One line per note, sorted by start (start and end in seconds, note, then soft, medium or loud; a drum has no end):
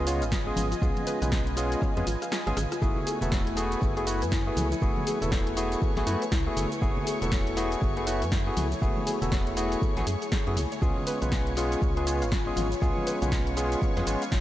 0.00 0.23 C#2 loud
0.00 2.78 F4 medium
0.00 2.78 B4 medium
0.00 2.78 D#5 medium
0.00 10.78 G#5 medium
0.07 0.22 G#3 medium
0.07 0.22 B3 medium
0.07 0.22 C#4 medium
0.07 0.11 F4 medium
0.07 0.22 F4 medium
0.07 0.22 C#5 medium
0.07 open hi-hat loud
0.07 shaker medium
0.22 0.51 G#1 medium
0.22 0.27 F5 medium
0.22 closed hi-hat medium
0.22 shaker soft
0.32 0.43 F4 loud
0.32 kick loud
0.32 snare loud
0.32 shaker soft
0.47 0.67 G#3 medium
0.47 0.67 B3 medium
0.47 0.67 C#4 medium
0.47 0.67 F4 medium
0.47 0.67 G#4 loud
0.56 0.74 G#1 medium
0.56 open hi-hat loud
0.56 high conga medium
0.56 low conga medium
0.56 shaker medium
0.72 0.79 F4 medium
0.72 closed hi-hat medium
0.72 shaker soft
0.81 0.91 C#2 loud
0.81 1.18 G#3 medium
0.81 1.18 B3 medium
0.81 1.18 C#4 medium
0.81 0.86 F4 medium
0.81 1.18 F4 medium
0.81 1.18 G#4 loud
0.81 kick loud
0.81 shaker soft
0.97 closed hi-hat soft
0.97 high conga medium
0.97 low conga medium
1.07 1.14 B4 loud
1.07 open hi-hat loud
1.07 shaker medium
1.22 1.76 B1 medium
1.22 1.54 G#3 medium
1.22 1.54 B3 medium
1.22 1.54 C#4 medium
1.22 1.55 F4 medium
1.22 1.55 B4 medium
1.22 closed hi-hat medium
1.22 low conga medium
1.22 shaker soft
1.32 1.43 G#5 medium
1.32 kick loud
1.32 snare loud
1.32 shaker soft
1.47 closed hi-hat medium
1.57 1.93 G#3 medium
1.57 1.93 B3 medium
1.57 1.93 C#4 medium
1.57 1.68 F4 medium
1.57 1.93 F4 medium
1.57 1.93 G#4 loud
1.57 open hi-hat loud
1.57 shaker medium
1.72 closed hi-hat medium
1.72 shaker soft
1.82 1.86 C#5 medium
1.82 kick loud
1.82 cross-stick medium
1.82 shaker soft
1.96 2.03 F2 medium
1.96 2.05 G#3 medium
1.96 2.05 B3 medium
1.96 2.05 C#4 medium
1.96 2.05 F4 medium
1.96 2.05 G#4 medium
1.96 2.00 B4 medium
1.96 cross-stick medium
1.96 closed hi-hat medium
1.96 high conga medium
2.07 2.16 G#1 medium
2.07 2.11 F4 medium
2.07 open hi-hat loud
2.07 shaker medium
2.22 2.27 F5 medium
2.22 cross-stick medium
2.22 closed hi-hat medium
2.22 shaker soft
2.32 2.43 F4 loud
2.32 cross-stick medium
2.32 snare loud
2.32 shaker soft
2.47 2.53 G#1 medium
2.47 2.57 G#3 medium
2.47 2.57 B3 medium
2.47 2.57 C#4 medium
2.47 2.58 F4 medium
2.47 2.58 G#4 loud
2.47 cross-stick medium
2.47 closed hi-hat soft
2.57 2.66 G#1 medium
2.57 cross-stick loud
2.57 open hi-hat loud
2.57 low conga medium
2.57 shaker medium
2.72 2.79 F4 medium
2.72 cross-stick medium
2.72 closed hi-hat medium
2.72 shaker soft
2.82 2.91 F#1 loud
2.82 3.18 A3 medium
2.82 10.78 A3 medium
2.82 3.18 B3 medium
2.82 10.78 E4 medium
2.82 2.86 E4 medium
2.82 3.18 E4 medium
2.82 3.18 F#4 medium
2.82 3.18 G#4 loud
2.82 6.78 B4 medium
2.82 10.81 C#5 medium
2.82 10.81 C#6 medium
2.82 kick loud
2.82 shaker soft
2.96 low conga medium
3.07 3.14 G#4 loud
3.07 open hi-hat loud
3.07 shaker medium
3.21 3.76 E1 medium
3.21 3.54 A3 medium
3.21 3.54 B3 medium
3.21 3.54 E4 medium
3.21 3.55 F#4 medium
3.21 3.55 A4 medium
3.21 closed hi-hat medium
3.21 low conga loud
3.21 shaker soft
3.32 3.43 C#5 medium
3.32 kick loud
3.32 snare loud
3.32 shaker soft
3.47 closed hi-hat medium
3.57 3.93 A3 medium
3.57 3.93 B3 medium
3.57 3.68 E4 medium
3.57 3.93 E4 medium
3.57 3.93 F#4 medium
3.57 3.93 G#4 medium
3.57 open hi-hat loud
3.57 shaker medium
3.72 closed hi-hat medium
3.72 shaker soft
3.82 4.23 F#1 loud
3.82 3.86 A4 medium
3.82 kick loud
3.82 shaker soft
3.97 4.05 A3 medium
3.97 4.05 B3 medium
3.97 4.05 E4 medium
3.97 4.05 F#4 medium
3.97 4.00 G#4 medium
3.97 4.05 G#4 medium
3.97 closed hi-hat medium
4.07 4.22 A3 medium
4.07 4.22 B3 medium
4.07 4.11 E4 medium
4.07 4.22 E4 medium
4.07 4.22 F#4 medium
4.07 4.22 B4 medium
4.07 open hi-hat loud
4.07 shaker medium
4.22 4.51 F#2 medium
4.22 4.27 B4 medium
4.22 closed hi-hat medium
4.22 shaker soft
4.32 4.43 E4 loud
4.32 kick loud
4.32 snare loud
4.32 shaker soft
4.47 4.67 A3 medium
4.47 4.67 B3 medium
4.47 4.67 E4 medium
4.47 4.67 F#4 medium
4.47 4.67 G#4 loud
4.57 4.74 C#2 medium
4.57 open hi-hat loud
4.57 high conga loud
4.57 low conga medium
4.57 shaker medium
4.72 4.79 E4 medium
4.72 closed hi-hat medium
4.72 shaker soft
4.82 4.91 F#1 loud
4.82 5.18 A3 medium
4.82 5.18 B3 medium
4.82 5.18 E4 medium
4.82 4.86 E4 medium
4.82 5.18 F#4 medium
4.82 5.18 G#4 loud
4.82 kick loud
4.82 shaker soft
4.97 high conga medium
4.97 low conga medium
5.07 5.14 G#4 loud
5.07 open hi-hat loud
5.07 shaker medium
5.22 5.76 E1 medium
5.22 5.54 A3 medium
5.22 5.54 B3 medium
5.22 5.54 E4 medium
5.22 5.55 F#4 medium
5.22 5.55 A4 medium
5.22 closed hi-hat medium
5.22 low conga loud
5.22 shaker soft
5.32 5.43 C#5 medium
5.32 kick loud
5.32 snare loud
5.32 shaker soft
5.47 closed hi-hat medium
5.57 5.93 A3 medium
5.57 5.93 B3 medium
5.57 5.93 E4 medium
5.57 5.68 E4 medium
5.57 5.93 F#4 medium
5.57 5.93 G#4 medium
5.57 open hi-hat loud
5.57 shaker medium
5.72 closed hi-hat medium
5.72 shaker soft
5.82 5.86 A4 medium
5.82 kick loud
5.82 shaker soft
5.96 6.03 A1 medium
5.96 6.05 A3 medium
5.96 6.05 B3 medium
5.96 6.05 E4 medium
5.96 6.05 F#4 medium
5.96 6.00 G#4 medium
5.96 6.05 G#4 medium
5.96 snare soft
5.96 closed hi-hat medium
5.96 high conga medium
6.07 6.16 F#2 medium
6.07 6.22 A3 medium
6.07 6.22 B3 medium
6.07 6.11 E4 medium
6.07 6.22 E4 medium
6.07 6.22 F#4 medium
6.07 6.22 B4 medium
6.07 open hi-hat loud
6.07 shaker medium
6.22 6.27 B4 medium
6.22 closed hi-hat medium
6.22 shaker soft
6.32 6.49 C#2 medium
6.32 6.43 E4 loud
6.32 kick loud
6.32 snare loud
6.32 shaker soft
6.47 6.67 A3 medium
6.47 6.67 B3 medium
6.47 6.67 E4 medium
6.47 6.67 F#4 medium
6.47 6.67 G#4 loud
6.57 6.66 F#1 loud
6.57 open hi-hat loud
6.57 low conga medium
6.57 shaker medium
6.72 6.79 E4 medium
6.72 closed hi-hat medium
6.72 shaker soft
6.81 6.91 F#1 loud
6.81 7.18 A3 medium
6.81 7.18 B3 medium
6.81 6.86 E4 medium
6.81 7.18 E4 medium
6.81 7.18 F#4 medium
6.81 7.18 G#4 loud
6.81 14.40 C#5 medium
6.81 kick loud
6.81 shaker soft
6.97 low conga loud
7.07 7.14 G#4 loud
7.07 open hi-hat loud
7.07 shaker medium
7.22 7.76 E1 medium
7.22 7.54 A3 medium
7.22 7.54 B3 medium
7.22 7.54 E4 medium
7.22 7.55 F#4 medium
7.22 7.55 A4 medium
7.22 closed hi-hat medium
7.22 low conga loud
7.22 shaker soft
7.32 7.43 C#5 medium
7.32 kick loud
7.32 snare loud
7.32 shaker soft
7.47 closed hi-hat soft
7.57 7.93 A3 medium
7.57 7.93 B3 medium
7.57 7.68 E4 medium
7.57 7.93 E4 medium
7.57 7.93 F#4 medium
7.57 7.93 G#4 loud
7.57 open hi-hat loud
7.57 shaker medium
7.72 closed hi-hat medium
7.72 shaker soft
7.82 8.23 F#1 loud
7.82 7.86 A4 medium
7.82 kick loud
7.82 shaker soft
7.97 8.05 A3 medium
7.97 8.05 B3 medium
7.97 8.05 E4 medium
7.97 8.05 F#4 medium
7.97 8.00 G#4 medium
7.97 8.05 G#4 medium
7.97 closed hi-hat medium
8.07 8.22 A3 medium
8.07 8.22 B3 medium
8.07 8.11 E4 medium
8.07 8.22 E4 medium
8.07 8.22 F#4 medium
8.07 8.22 B4 medium
8.07 open hi-hat loud
8.07 shaker medium
8.22 8.51 F#2 medium
8.22 8.27 B4 medium
8.22 closed hi-hat medium
8.22 shaker soft
8.32 8.43 E4 loud
8.32 kick loud
8.32 snare loud
8.32 shaker soft
8.47 8.67 A3 medium
8.47 8.67 B3 medium
8.47 8.67 E4 medium
8.47 8.67 F#4 medium
8.47 8.67 G#4 medium
8.57 8.74 C#2 medium
8.57 open hi-hat loud
8.57 high conga medium
8.57 low conga medium
8.57 shaker medium
8.72 8.79 E4 medium
8.72 closed hi-hat medium
8.72 shaker soft
8.82 8.91 F#1 loud
8.82 9.18 A3 medium
8.82 9.18 B3 medium
8.82 9.18 E4 medium
8.82 8.86 E4 medium
8.82 9.18 F#4 medium
8.82 9.18 G#4 loud
8.82 kick loud
8.82 shaker soft
8.97 high conga medium
8.97 low conga medium
9.07 9.14 G#4 loud
9.07 open hi-hat loud
9.07 shaker medium
9.22 9.76 E1 medium
9.22 9.54 A3 medium
9.22 9.54 B3 medium
9.22 9.54 E4 medium
9.22 9.55 F#4 medium
9.22 9.55 A4 medium
9.22 closed hi-hat medium
9.22 low conga medium
9.22 shaker soft
9.32 9.43 C#5 medium
9.32 kick loud
9.32 snare loud
9.32 shaker soft
9.47 closed hi-hat soft
9.57 9.93 A3 medium
9.57 9.93 B3 medium
9.57 9.68 E4 medium
9.57 9.93 E4 medium
9.57 9.93 F#4 medium
9.57 9.93 G#4 loud
9.57 open hi-hat loud
9.57 shaker medium
9.72 closed hi-hat medium
9.72 shaker soft
9.82 9.86 A4 medium
9.82 kick loud
9.82 shaker soft
9.97 10.03 A1 medium
9.97 10.05 A3 medium
9.97 10.05 B3 medium
9.97 10.05 E4 medium
9.97 10.05 F#4 medium
9.97 10.00 G#4 medium
9.97 10.05 G#4 medium
9.97 snare soft
9.97 closed hi-hat medium
9.97 high conga medium
10.07 10.16 F#2 medium
10.07 10.18 G#4 loud
10.07 open hi-hat loud
10.07 shaker medium
10.22 10.27 G#4 medium
10.22 closed hi-hat medium
10.22 shaker soft
10.32 10.43 G#4 medium
10.32 kick loud
10.32 snare loud
10.32 shaker soft
10.47 10.58 F#2 medium
10.47 10.57 A3 medium
10.47 10.57 B3 medium
10.47 10.58 E4 medium
10.47 10.58 F#4 medium
10.47 10.52 G#4 medium
10.47 10.58 G#4 loud
10.47 closed hi-hat soft
10.57 10.66 C#2 medium
10.57 open hi-hat loud
10.57 low conga medium
10.57 shaker medium
10.72 10.79 C#5 medium
10.72 closed hi-hat medium
10.72 shaker soft
10.82 10.91 C#2 loud
10.82 11.18 G#3 medium
10.82 11.18 B3 medium
10.82 11.18 C#4 medium
10.82 14.40 F4 medium
10.82 10.86 F4 medium
10.82 11.18 F4 medium
10.82 11.18 G#4 loud
10.82 14.40 B4 medium
10.82 14.40 C#5 medium
10.82 14.40 G#5 medium
10.82 14.40 C#6 medium
10.82 kick loud
10.82 shaker soft
10.97 low conga medium
11.07 11.14 B4 loud
11.07 open hi-hat loud
11.07 shaker medium
11.22 11.76 B1 medium
11.22 11.54 G#3 medium
11.22 11.54 B3 medium
11.22 11.54 C#4 medium
11.22 11.55 F4 medium
11.22 11.55 B4 medium
11.22 closed hi-hat medium
11.22 low conga loud
11.22 shaker soft
11.32 11.43 G#5 medium
11.32 kick loud
11.32 snare loud
11.32 shaker soft
11.47 closed hi-hat soft
11.57 11.93 G#3 medium
11.57 11.93 B3 medium
11.57 11.93 C#4 medium
11.57 11.68 F4 medium
11.57 11.93 F4 medium
11.57 11.93 G#4 loud
11.57 open hi-hat loud
11.57 shaker medium
11.72 closed hi-hat medium
11.72 shaker soft
11.82 12.23 C#2 loud
11.82 11.86 C#5 medium
11.82 kick loud
11.82 shaker soft
11.97 12.05 G#3 medium
11.97 12.05 B3 medium
11.97 12.05 C#4 medium
11.97 12.05 F4 medium
11.97 12.05 G#4 medium
11.97 12.00 B4 medium
11.97 closed hi-hat medium
12.07 12.22 G#3 medium
12.07 12.22 B3 medium
12.07 12.22 C#4 medium
12.07 12.11 F4 medium
12.07 12.22 F4 medium
12.07 12.22 C#5 medium
12.07 open hi-hat loud
12.07 shaker medium
12.22 12.51 G#1 medium
12.22 12.27 F5 medium
12.22 closed hi-hat medium
12.22 shaker soft
12.32 12.43 F4 loud
12.32 kick loud
12.32 snare loud
12.32 shaker soft
12.47 12.67 G#3 medium
12.47 12.67 B3 medium
12.47 12.67 C#4 medium
12.47 12.67 F4 medium
12.47 12.67 G#4 loud
12.56 12.74 G#1 medium
12.56 12.68 F4 medium
12.56 open hi-hat loud
12.56 high conga medium
12.56 low conga medium
12.56 shaker medium
12.72 closed hi-hat medium
12.72 shaker soft
12.82 12.91 C#2 loud
12.82 13.18 G#3 medium
12.82 13.18 B3 medium
12.82 13.18 C#4 medium
12.82 12.86 F4 medium
12.82 13.18 F4 medium
12.82 13.18 G#4 loud
12.82 kick loud
12.82 shaker soft
12.97 high conga medium
12.97 low conga medium
13.07 13.14 B4 loud
13.07 open hi-hat loud
13.07 shaker medium
13.22 13.76 B1 medium
13.22 13.54 G#3 medium
13.22 13.54 B3 medium
13.22 13.54 C#4 medium
13.22 13.55 F4 medium
13.22 13.55 B4 medium
13.22 closed hi-hat medium
13.22 low conga medium
13.22 shaker soft
13.32 13.43 G#5 medium
13.32 kick loud
13.32 snare loud
13.32 shaker soft
13.47 closed hi-hat medium
13.57 13.93 G#3 medium
13.57 13.93 B3 medium
13.57 13.93 C#4 medium
13.57 13.68 F4 medium
13.57 13.93 F4 medium
13.57 13.93 G#4 loud
13.57 open hi-hat loud
13.57 shaker medium
13.72 closed hi-hat medium
13.72 shaker soft
13.82 13.86 C#5 medium
13.82 kick loud
13.82 shaker soft
13.97 14.03 F2 medium
13.97 14.05 G#3 medium
13.97 14.05 B3 medium
13.97 14.05 C#4 medium
13.97 14.05 F4 medium
13.97 14.05 G#4 medium
13.97 14.00 B4 medium
13.97 snare soft
13.97 closed hi-hat medium
13.97 high conga medium
14.06 14.16 G#1 medium
14.06 14.22 G#3 medium
14.06 14.22 B3 medium
14.06 14.22 C#4 medium
14.06 14.11 F4 medium
14.06 14.22 F4 medium
14.06 14.22 C#5 medium
14.06 open hi-hat loud
14.06 shaker medium
14.22 14.27 F5 medium
14.22 closed hi-hat medium
14.22 shaker soft
14.32 14.40 G#1 medium
14.32 14.40 F4 loud
14.32 kick loud
14.32 snare loud
14.32 shaker soft